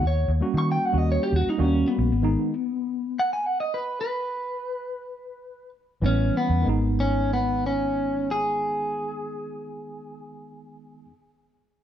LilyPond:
<<
  \new Staff \with { instrumentName = "Clean electric guitar" } { \time 4/4 \key gis \minor \tempo 4 = 101 << { r1 | r2 fis''16 gis''16 fis''16 dis''16 b'8 b'8~ | b'2~ b'8 r4. | r8 cis'8 b8 cis'4 gis'4.~ |
gis'1 | } \\ { cis''8 r8 cis'''16 g''16 fis''16 dis''16 cis''16 g'16 fis'16 dis'16 cis'8 b8~ | b2~ b8 r4. | r2. cis'8 b8 | r1 |
r1 | } >> }
  \new Staff \with { instrumentName = "Tine electric piano" } { \time 4/4 \key gis \minor r8. <g ais cis' fis'>4 <g ais cis' fis'>4~ <g ais cis' fis'>16 <g ais cis' fis'>4 | r16 <dis gis b dis'>8 r2. r16 | r2. <e g b cis'>4 | <dis gis b dis'>1~ |
<dis gis b dis'>1 | }
  \new Staff \with { instrumentName = "Fingered electric bass" } { \clef bass \time 4/4 \key gis \minor dis,8 dis,16 r16 dis8 r16 dis,8 r16 dis,16 r16 dis,8 r16 ais,,16 | gis,,8 r2. r8 | r2. a,,8 r16 e,16 | gis,,1~ |
gis,,1 | }
>>